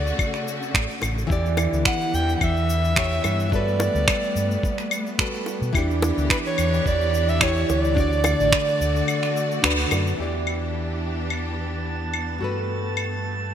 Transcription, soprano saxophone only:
0.00 1.03 D5 loud
1.87 2.16 F#5 loud
2.14 2.35 G5 loud
2.36 2.45 F#5 medium
2.43 3.52 E5 loud
3.53 5.15 D5 loud
6.31 6.37 B4 medium
6.47 6.84 C#5 loud
6.87 7.31 D5 loud
7.29 7.44 E5 loud
7.42 7.70 C#5 loud
7.71 9.88 D5 loud

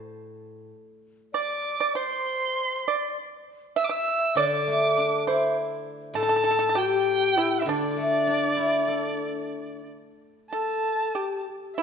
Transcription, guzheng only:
0.00 0.69 A2 medium
4.35 6.15 D3 medium
4.67 5.86 A3 soft
4.97 6.16 D4 medium
5.27 6.46 E4 medium
6.14 7.66 A2 medium
7.65 9.52 D3 medium
7.97 9.21 A3 medium
8.27 9.53 D4 medium
8.57 9.86 E4 medium
8.88 10.19 A4 medium

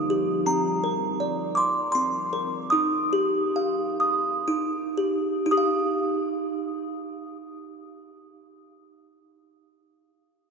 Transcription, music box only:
0.00 0.46 D#4 medium
0.00 0.46 F5 medium
0.00 0.47 D#6 medium
0.10 0.46 G4 medium
0.46 1.94 C4 medium
0.46 1.53 A#5 medium
0.84 2.32 A#4 medium
1.20 2.73 D5 medium
1.55 1.91 C6 medium
1.55 1.95 D6 medium
1.92 2.73 C4 medium
1.92 2.74 C6 medium
2.33 2.73 A#4 medium
2.70 4.46 D#4 medium
2.70 3.99 D#6 medium
3.13 4.96 G4 medium
3.56 5.52 F5 medium
4.00 5.50 D#6 medium
4.48 5.45 D#4 medium
4.97 5.51 G4 medium
5.46 9.81 D#4 medium
5.51 9.86 G4 medium
5.51 9.86 D#6 medium
5.57 9.92 F5 medium

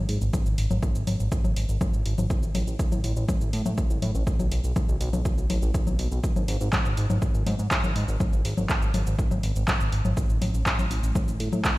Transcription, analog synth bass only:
0.09 0.18 G#2 medium
0.21 0.30 G#1 medium
0.46 0.54 G#1 medium
0.58 0.67 G#1 loud
0.71 0.79 G#1 medium
0.95 1.04 G#1 medium
1.07 1.16 G#1 loud
1.20 1.28 G#1 medium
1.44 1.53 G#1 medium
1.56 1.65 G#1 loud
1.69 1.77 G#1 medium
1.94 2.02 G#1 medium
2.06 2.14 G#1 loud
2.18 2.27 G#1 medium
2.43 2.51 A1 medium
2.55 2.64 A1 loud
2.67 2.76 A1 medium
2.92 3.00 A1 medium
3.04 3.13 A1 loud
3.17 3.25 A1 medium
3.41 3.49 A1 medium
3.53 3.62 A2 loud
3.66 3.74 A2 medium
3.90 3.99 A1 medium
4.02 4.11 A2 medium
4.15 4.23 A1 medium
4.39 4.48 B1 medium
4.52 4.60 B1 loud
4.64 4.72 B1 medium
4.89 4.97 B1 medium
5.01 5.09 B1 loud
5.13 5.22 B1 medium
5.38 5.46 B1 medium
5.50 5.59 A1 loud
5.62 5.71 A1 medium
5.87 5.95 B1 medium
5.99 6.08 B1 medium
6.12 6.20 B1 loud
6.36 6.45 G#1 medium
6.48 6.57 G#1 loud
6.61 6.69 G#1 medium
6.85 6.94 G#1 medium
6.97 7.06 G#1 medium
7.10 7.18 G#1 medium
7.34 7.43 G#1 medium
7.46 7.55 G#2 loud
7.59 7.67 G#2 medium
7.84 7.92 G#1 medium
7.96 8.04 G#2 medium
8.08 8.17 G#1 medium
8.33 8.41 G#1 medium
8.45 8.54 G#1 loud
8.57 8.66 G#1 medium
8.82 8.90 G#1 medium
8.94 9.03 G#1 loud
9.07 9.15 G#1 medium
9.31 9.40 G#1 medium
9.43 9.52 G#1 medium
9.56 9.64 G#1 medium
9.80 9.89 G#1 medium
9.92 10.01 G#1 loud
10.05 10.13 G#1 loud
10.30 10.38 A1 medium
10.42 10.50 A1 loud
10.54 10.63 A1 medium
10.79 10.87 A1 medium
10.91 11.00 A1 loud
11.03 11.12 A1 medium
11.28 11.36 A1 medium
11.40 11.49 A2 loud
11.53 11.61 A2 medium

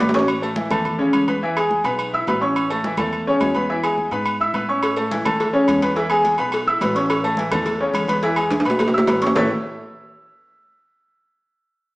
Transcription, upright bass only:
0.00 0.65 A1 medium
0.70 1.10 E2 medium
1.13 1.79 E2 medium
1.84 2.24 B1 loud
2.27 2.93 A1 medium
2.98 3.38 E2 medium
3.40 4.06 E2 medium
4.11 4.51 G#2 medium
4.54 5.20 A2 medium
5.26 5.65 E2 medium
5.68 6.33 E2 medium
6.39 6.78 B1 medium
6.81 7.46 A1 medium
7.51 7.91 E2 loud
7.94 8.59 E2 medium
8.65 9.05 B1 medium
9.07 9.32 A1 medium
9.36 9.49 A1 loud

